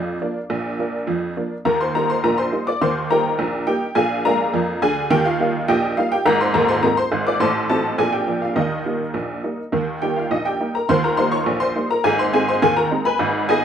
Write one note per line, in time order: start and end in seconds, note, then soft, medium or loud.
0.00 0.16 F2 medium
0.00 0.16 F3 medium
0.00 1.04 F4 medium
0.00 1.04 D5 medium
0.00 1.08 F5 medium
0.21 0.37 F3 soft
0.21 0.37 A#3 soft
0.21 0.37 D4 soft
0.50 0.74 A#1 medium
0.50 0.74 A#2 medium
0.78 0.94 F3 soft
0.78 0.95 A#3 soft
0.78 0.95 D4 medium
1.07 1.32 F2 medium
1.07 1.32 F3 medium
1.36 1.52 F3 soft
1.36 1.53 A#3 soft
1.36 1.53 D4 soft
1.65 1.90 D#2 medium
1.65 1.90 D#3 medium
1.65 1.80 A#4 medium
1.65 1.80 A#5 medium
1.81 1.95 C5 medium
1.81 1.95 C6 medium
1.95 2.11 G3 medium
1.95 2.11 A#3 soft
1.95 2.11 D#4 soft
1.95 2.09 A#4 medium
1.95 2.09 A#5 medium
2.10 2.23 C5 medium
2.10 2.24 C6 medium
2.24 2.48 A#1 medium
2.24 2.48 A#2 medium
2.24 2.38 A#4 medium
2.24 2.38 A#5 medium
2.38 2.65 C5 medium
2.38 2.67 C6 medium
2.52 2.68 G3 soft
2.52 2.68 A#3 soft
2.52 2.68 D#4 soft
2.67 2.81 D5 medium
2.67 2.81 D6 medium
2.81 3.06 D#2 medium
2.81 3.06 D#3 medium
2.81 3.09 C5 medium
2.81 3.10 C6 medium
3.10 3.26 G3 medium
3.10 3.27 A#3 soft
3.10 3.27 D#4 medium
3.10 3.64 A#4 medium
3.10 3.64 G5 medium
3.10 3.68 A#5 medium
3.39 3.63 A#1 medium
3.39 3.63 A#2 medium
3.67 3.83 G3 medium
3.67 3.83 A#3 soft
3.67 3.83 D#4 medium
3.67 3.95 G4 medium
3.67 3.96 G5 medium
3.95 4.20 A#1 medium
3.95 4.20 A#2 medium
3.95 4.23 G#4 medium
3.95 4.23 F5 medium
3.95 4.24 G#5 medium
4.25 4.41 G#3 medium
4.25 4.41 A#3 soft
4.25 4.41 D4 medium
4.25 4.79 A#4 medium
4.25 4.79 F5 medium
4.25 4.82 A#5 loud
4.53 4.78 F2 medium
4.53 4.78 F3 medium
4.82 5.05 D2 medium
4.82 5.05 D3 medium
4.82 5.09 G#4 medium
4.82 5.11 G#5 medium
5.10 5.35 D#2 medium
5.10 5.35 D#3 medium
5.10 5.25 G4 medium
5.10 5.25 G5 loud
5.25 5.66 F4 medium
5.25 5.68 F5 medium
5.40 5.55 G3 medium
5.40 5.56 A#3 medium
5.40 5.56 D#4 medium
5.68 5.93 A#1 medium
5.68 5.93 A#2 medium
5.68 5.96 G4 medium
5.68 5.96 D#5 medium
5.68 5.97 G5 loud
5.97 6.13 G3 medium
5.97 6.13 A#3 medium
5.97 6.14 D#4 medium
5.97 6.11 F4 medium
5.97 6.11 F5 medium
6.12 6.25 G4 medium
6.12 6.26 G5 medium
6.26 6.48 G#1 medium
6.26 6.49 G#2 medium
6.26 6.40 A#4 medium
6.26 6.40 A#5 loud
6.41 6.54 C5 medium
6.41 6.55 C6 medium
6.54 6.77 D#1 medium
6.54 6.77 D#2 medium
6.54 6.68 A#4 medium
6.54 6.68 A#5 medium
6.68 6.82 C5 medium
6.68 6.83 C6 medium
6.83 6.99 G#3 medium
6.83 6.99 C4 medium
6.83 6.99 D#4 medium
6.83 6.97 A#4 medium
6.83 6.97 A#5 medium
6.97 7.25 C5 medium
6.97 7.26 C6 medium
7.12 7.35 G#1 medium
7.12 7.35 G#2 medium
7.27 7.41 D5 medium
7.27 7.41 D6 medium
7.40 7.65 A1 medium
7.40 7.65 A2 medium
7.40 7.68 C5 medium
7.40 7.68 A5 medium
7.40 7.69 C6 medium
7.69 7.85 F#3 medium
7.69 7.86 C4 medium
7.69 7.86 D#4 medium
7.69 7.97 A4 medium
7.69 7.98 A5 medium
7.98 8.23 A#1 medium
7.98 8.23 A#2 medium
7.98 8.12 G#4 medium
7.98 8.13 G#5 medium
8.12 8.40 G4 medium
8.12 8.42 G5 medium
8.27 8.43 F3 soft
8.27 8.43 A#3 soft
8.27 8.44 D4 soft
8.42 8.56 F4 soft
8.42 8.56 F5 medium
8.56 8.81 D#2 medium
8.56 8.81 D#3 medium
8.56 8.85 D#4 soft
8.56 10.56 A#4 soft
8.56 10.29 D#5 medium
8.85 9.01 G3 soft
8.85 9.02 A#3 soft
8.85 9.02 D#4 soft
9.14 9.39 A#1 medium
9.14 9.39 A#2 medium
9.43 9.59 G3 soft
9.43 9.60 A#3 soft
9.43 9.60 D#4 soft
9.72 9.97 D#2 medium
9.72 9.97 D#3 medium
10.02 10.18 G3 soft
10.02 10.18 A#3 soft
10.02 10.19 D#4 soft
10.02 10.16 G4 medium
10.02 10.16 G5 medium
10.16 10.30 F4 soft
10.16 10.31 F5 medium
10.31 10.55 A#1 medium
10.31 10.56 A#2 medium
10.31 10.45 D#4 medium
10.31 10.45 D#5 medium
10.45 10.73 G4 medium
10.45 10.74 G5 medium
10.60 10.76 G3 soft
10.60 10.76 A#3 soft
10.60 10.76 D#4 soft
10.75 10.89 A#4 medium
10.75 10.89 A#5 medium
10.89 11.13 D#2 medium
10.89 11.14 D#3 medium
10.89 11.03 C5 medium
10.89 11.03 C6 medium
11.04 11.18 A#4 medium
11.04 11.18 A#5 medium
11.17 11.34 G3 medium
11.17 11.34 A#3 medium
11.17 11.34 D#4 medium
11.17 11.32 C5 medium
11.17 11.32 C6 loud
11.32 11.59 C#5 medium
11.32 11.61 C#6 medium
11.46 11.71 A#1 medium
11.46 11.71 A#2 medium
11.60 11.88 C5 medium
11.60 11.89 C6 loud
11.75 11.91 G3 medium
11.75 11.91 A#3 soft
11.75 11.92 D#4 medium
11.91 12.04 A#4 medium
11.91 12.05 A#5 medium
12.04 12.29 G#1 medium
12.04 12.29 G#2 medium
12.04 12.19 G#4 medium
12.04 12.19 G#5 loud
12.19 12.33 C5 medium
12.19 12.33 C6 medium
12.33 12.49 G#3 soft
12.33 12.49 C4 medium
12.33 12.50 D#4 medium
12.33 12.47 G#4 medium
12.33 12.48 G#5 medium
12.48 12.62 C5 medium
12.48 12.62 C6 medium
12.62 12.87 D#2 medium
12.62 12.87 D#3 medium
12.62 12.76 G#4 medium
12.62 12.77 G#5 loud
12.77 13.04 A#4 medium
12.77 13.05 A#5 medium
12.91 13.07 G#3 soft
12.91 13.07 C4 soft
12.91 13.07 D#4 medium
13.05 13.46 B4 medium
13.05 13.46 G#5 medium
13.05 13.48 B5 medium
13.19 13.44 G#1 medium
13.19 13.44 G#2 medium
13.49 13.65 G#3 soft
13.49 13.65 B3 medium
13.49 13.65 D#4 medium
13.49 13.65 G#4 medium
13.49 13.65 D#5 medium
13.49 13.65 G#5 medium